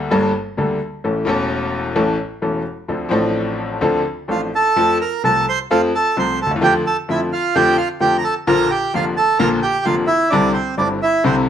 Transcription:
0.11 grand piano G1 G2 G3 A#3 D4 A4
0.57 grand piano D2 D3 G3 A#3 D4 A4
1.04 grand piano A1 A2 E3 A3 C#4 A4
1.25 grand piano E1 E2 E3 A3 C#4 A4
1.96 grand piano A1 A2 E3 A3 C#4 A4
2.42 grand piano E1 E2 E3 A3 C#4 A4
2.88 grand piano D2 D3 F3 C4 D4 A4
3.09 grand piano A1 A2 F3 C4 D4 A4
3.81 grand piano D2 D3 F3 C4 D4 A4
4.28 grand piano A1 A2 F3 C4 D4 A4, bandoneon F4 F5
4.55 bandoneon A4 A5
4.76 grand piano F2 F3 A3 C4 A4
5.01 bandoneon A#4 A#5
5.24 grand piano C2 C3 F3 A3 C4 A4, bandoneon A4 A5
5.49 bandoneon C5 C6
5.71 grand piano F2 F3 A3 C4 A4, bandoneon F4 F5
5.95 bandoneon A4 A5
6.16 grand piano C2 C3 F3 A3 C4 A4, bandoneon C5 C6
6.42 bandoneon A4 A5
6.46 grand piano D2
6.51 grand piano D#2
6.56 grand piano E2
6.61 grand piano F2 D3 F3 A3 C4 F4, bandoneon G4 G5
6.87 bandoneon A4 A5
7.08 grand piano F2 D3 F3 A3 C4 F4, bandoneon E4 E5
7.33 bandoneon F4 F5
7.55 grand piano F2 D3 F3 A3 C4 F4, bandoneon G4 G5
7.77 bandoneon F4 F5
8.00 grand piano F2 D3 F3 A3 C4 F4, bandoneon G4 G5
8.18 bandoneon A#5
8.24 bandoneon A4 A5
8.47 grand piano A#1 A#2 D3 F3 A#3 F4, bandoneon A#4 A#5
8.71 bandoneon G4 G5
8.94 grand piano F1 F2 D3 F3 A#3 F4, bandoneon F4 F5
9.17 bandoneon A4 A5
9.39 grand piano A#1 A#2 D3 F3 A#3 F4, bandoneon A#4 A#5
9.62 bandoneon G4 G5
9.85 grand piano F1 F2 D3 F3 A#3 F4, bandoneon F4 F5
10.07 bandoneon E4 E5
10.30 grand piano C2 C3 D3 G3 C4 E4, bandoneon D4 D5
10.53 bandoneon C4 C5
10.77 grand piano G1 G2 D3 G3 C4 E4, bandoneon D4 D5
11.02 bandoneon E4 E5
11.24 grand piano C2 C3 D3 G3 C4 E4, bandoneon C4 C5

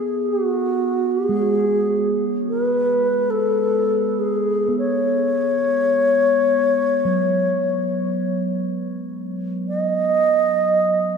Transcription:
Already playing: singing bowl B3, alto flute G#4
0.30 alto flute F#4
1.11 alto flute G#4
1.29 singing bowl G#3
2.49 alto flute B4
3.30 alto flute A4
4.19 alto flute G#4
4.68 singing bowl B3
4.78 alto flute C#5
7.05 singing bowl F#3
9.68 alto flute D#5

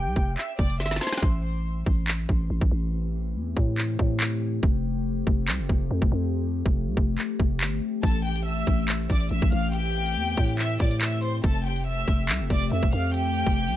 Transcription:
Already playing: violin section G4 G5
0.06 808-style bass C2
0.16 808-style bass F1, kick, closed hi-hat
0.37 violin section E5 E6, clap, closed hi-hat
0.59 808-style bass F1, violin section D5 D6, kick
0.70 closed hi-hat
0.80 808-style bass G1, violin section E5 E6, snare
0.86 snare
0.91 snare, closed hi-hat
0.96 snare, closed hi-hat
1.01 violin section C5 C6, snare
1.05 snare, closed hi-hat
1.12 snare, closed hi-hat
1.18 snare, closed hi-hat
1.23 808-style bass A1, ambient pad E3 A3 C4 G4, kick
1.86 808-style bass A1, kick
2.08 clap
2.29 808-style bass A1, kick
2.50 808-style bass A1
2.61 808-style bass A1, kick
2.72 808-style bass A1
3.35 808-style bass E2
3.57 808-style bass A2, kick
3.78 clap
3.99 808-style bass A2, kick
4.20 clap
4.63 808-style bass F1, ambient pad F3, kick
5.27 808-style bass F1, kick
5.48 808-style bass C2, clap
5.59 808-style bass F1
5.69 808-style bass F1, kick
5.91 808-style bass F2
6.02 808-style bass F1, kick
6.12 808-style bass F2
6.66 808-style bass F1, kick
6.87 808-style bass C2
6.97 808-style bass F1, kick
7.18 clap
7.40 808-style bass F1, kick
7.61 808-style bass G1, clap
8.03 808-style bass A1, ambient pad E3 C4, violin section A4 A5, kick
8.07 closed hi-hat
8.25 violin section G4 G5
8.36 closed hi-hat
8.46 violin section E5 E6
8.67 808-style bass A1, kick, closed hi-hat
8.88 clap, closed hi-hat
9.09 808-style bass A1, violin section D5 D6, kick, closed hi-hat
9.21 closed hi-hat
9.31 808-style bass A1, violin section E5 E6
9.42 808-style bass A1, kick
9.52 808-style bass A1, violin section F5 F6, closed hi-hat
9.73 violin section G4 G5, closed hi-hat
10.06 closed hi-hat
10.16 808-style bass E2
10.37 808-style bass A2, kick, closed hi-hat
10.59 violin section E5 E6, clap, closed hi-hat
10.80 808-style bass A2, violin section D5 D6, kick
10.91 closed hi-hat
11.01 violin section E5 E6, clap
11.13 closed hi-hat
11.22 violin section C5 C6, closed hi-hat
11.44 808-style bass F1, ambient pad F3 A3 G4, violin section A4 A5, kick, closed hi-hat
11.65 violin section G4 G5
11.76 closed hi-hat
11.87 violin section E5 E6
12.08 808-style bass F1, kick, closed hi-hat
12.29 808-style bass C2, clap, closed hi-hat
12.40 808-style bass F1
12.50 808-style bass F1, violin section D5 D6, kick, closed hi-hat
12.61 closed hi-hat
12.72 808-style bass F2, violin section E5 E6
12.83 808-style bass F1, kick
12.93 808-style bass F2, violin section F5 F6, closed hi-hat
13.13 violin section G4 G5, closed hi-hat
13.47 808-style bass F1, kick, closed hi-hat
13.68 808-style bass C2

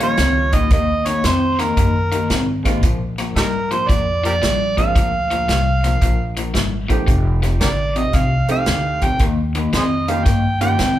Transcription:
Already playing: upright bass A#1
0.00 overdriven electric guitar D#3 A#3, upright piano G3 A#3 C#4 F4, harmonica C#5, closed hi-hat
0.17 upright bass C#2, overdriven electric guitar D#3 C4, snare, closed hi-hat
0.52 overdriven electric guitar D#3 A#3, harmonica D#5, kick, closed hi-hat
0.70 upright bass D#2, overdriven electric guitar D#3 A#3, harmonica D#5, kick, closed hi-hat
1.06 overdriven electric guitar D#3 A#3, harmonica C#5, snare, closed hi-hat
1.24 upright bass F2, overdriven electric guitar D#3 C4, harmonica C5, snare, closed hi-hat
1.59 overdriven electric guitar D#3 A#3, harmonica A#4, snare, closed hi-hat
1.77 upright bass F#2, overdriven electric guitar D#3 A#3, kick, closed hi-hat
2.12 overdriven electric guitar D#3 A#3, closed hi-hat
2.30 upright bass G#2, overdriven electric guitar D#3 C4, snare, closed hi-hat
2.63 overdriven electric guitar D#3 A#3, upright piano G#3 C4 D4 F4, kick, snare, closed hi-hat
2.83 upright bass A#2, overdriven electric guitar A#2 F3, kick, closed hi-hat
3.18 overdriven electric guitar A#2 F3, snare, closed hi-hat
3.36 upright bass G#2, overdriven electric guitar A#2 G3, harmonica D#4 G4 A#4, snare, closed hi-hat
3.71 overdriven electric guitar A#2 F3, harmonica C5, closed hi-hat
3.89 upright bass F2, overdriven electric guitar A#2 F3, harmonica D5, kick, snare, closed hi-hat
4.24 overdriven electric guitar A#2 F3, harmonica G4 A#4 D5, closed hi-hat
4.42 upright bass A#1, overdriven electric guitar A#2 G3, snare, closed hi-hat
4.76 overdriven electric guitar A#2 F3, upright piano G#3 C4 D4 F4, harmonica F5, kick, closed hi-hat
4.95 upright bass D2, overdriven electric guitar A#2 F3, kick, closed hi-hat
5.30 overdriven electric guitar A#2 F3, closed hi-hat
5.48 upright bass C2, overdriven electric guitar A#2 G3, snare, closed hi-hat
5.84 overdriven electric guitar A#2 F3, snare, closed hi-hat
6.01 upright bass A#1, overdriven electric guitar A#2 F3, kick, closed hi-hat
6.37 overdriven electric guitar A#2 F3, closed hi-hat
6.54 upright bass G#1, overdriven electric guitar A#2 G3, snare, closed hi-hat
6.88 overdriven electric guitar A#2 F3, upright piano A3 C4 D#4 G4, kick, closed hi-hat
7.07 upright bass F1, overdriven electric guitar F2 C3, kick, closed hi-hat
7.42 overdriven electric guitar F2 C3, snare, closed hi-hat
7.61 upright bass A1, overdriven electric guitar F2 D3, harmonica G4 A#4 D5, snare, closed hi-hat
7.96 overdriven electric guitar F2 C3, harmonica D#5, closed hi-hat
8.13 upright bass C2, overdriven electric guitar F2 C3, harmonica F5, kick, snare, closed hi-hat
8.48 overdriven electric guitar F2 C3, upright piano A3 C4 D#4 G4, harmonica F5, closed hi-hat
8.66 upright bass D2, overdriven electric guitar F2 D3, snare, closed hi-hat
9.01 overdriven electric guitar F2 C3, harmonica G5, kick, closed hi-hat
9.19 upright bass D#2, overdriven electric guitar D#3 A#3, kick, closed hi-hat
9.55 overdriven electric guitar D#3 A#3, closed hi-hat
9.73 upright bass F2, overdriven electric guitar D#3 C4, harmonica G#4 C5 D#5, snare, closed hi-hat
10.08 overdriven electric guitar D#3 A#3, upright piano A#3 C#4 F4 G4, harmonica F5, closed hi-hat
10.25 upright bass G2, overdriven electric guitar D#3 A#3, harmonica G5, kick, snare, closed hi-hat
10.60 overdriven electric guitar D#3 A#3, upright piano A#3 C#4 F4 G4, harmonica G5, closed hi-hat
10.79 upright bass G#2, overdriven electric guitar D#3 C4, snare, closed hi-hat

